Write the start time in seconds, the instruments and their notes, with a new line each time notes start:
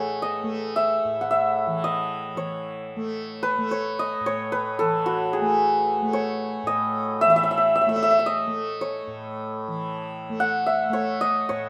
Already playing: tanpura A2 E3 A3, santur G#4 B4 C#5 D#5 F#5
0.22 santur D#5
0.44 tanpura A3
0.76 santur E5
1.04 tanpura A2
1.21 santur F#5
1.31 santur E5
1.67 tanpura E3
1.84 santur D#5
2.35 tanpura E3, santur C#5
2.96 tanpura A3
3.43 santur B4
3.58 tanpura A3
3.71 santur C#5
3.99 santur D#5
4.20 tanpura A2
4.26 santur C#5
4.52 santur B4
4.79 tanpura E3, santur A4
5.06 santur F#4
5.33 santur G#4
5.41 tanpura A3
6.02 tanpura A3
6.13 santur C#5
6.63 tanpura A2, santur D#5
7.21 santur E5
7.25 tanpura E3
7.30 santur E5
7.36 santur E5
7.43 santur E5
7.51 santur E5
7.58 santur E5
7.76 santur E5
7.81 santur E5
7.87 tanpura A3, santur E5
7.96 santur E5
8.03 santur E5
8.11 santur E5
8.19 santur E5
8.26 santur D#5
8.47 tanpura A3
8.81 santur C#5
9.07 tanpura A2
9.68 tanpura E3
10.29 tanpura A3
10.40 santur F#5
10.66 santur E5
10.90 tanpura A3, santur C#5
11.21 santur D#5
11.49 tanpura A2, santur C#5